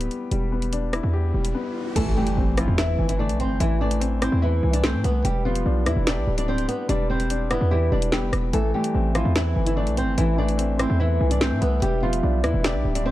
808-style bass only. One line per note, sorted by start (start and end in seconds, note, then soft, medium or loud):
0.31 1.01 E1 loud
1.03 1.33 E2 loud
1.34 1.54 E1 loud
1.96 2.16 A1 loud
2.37 2.67 A1 loud
2.68 2.97 E2 loud
2.99 3.31 G1 loud
3.30 3.46 B1 loud
3.45 3.59 G1 loud
3.60 4.29 A1 loud
4.32 4.62 E2 loud
4.63 4.95 C2 loud
4.94 5.04 A2 loud
5.04 5.24 C2 loud
5.25 5.64 E1 loud
5.66 5.88 B1 loud
5.86 5.96 E2 loud
5.97 6.19 E1 loud
6.17 6.27 B1 loud
6.27 6.67 D1 loud
6.89 7.58 E1 loud
7.61 7.91 E2 loud
7.92 8.24 E1 loud
8.23 8.32 F1 loud
8.33 8.53 E1 loud
8.53 8.73 A1 loud
8.94 9.24 A1 loud
9.25 9.55 E2 loud
9.56 9.88 G1 loud
9.87 10.04 B1 loud
10.02 10.17 G1 loud
10.18 10.87 A1 loud
10.90 11.19 E2 loud
11.21 11.53 C2 loud
11.51 11.61 A2 loud
11.62 11.81 C2 loud
11.82 12.22 E1 loud
12.23 12.45 B1 loud
12.44 12.54 E2 loud
12.54 12.76 E1 loud
12.75 12.84 B1 loud
12.85 13.11 D1 loud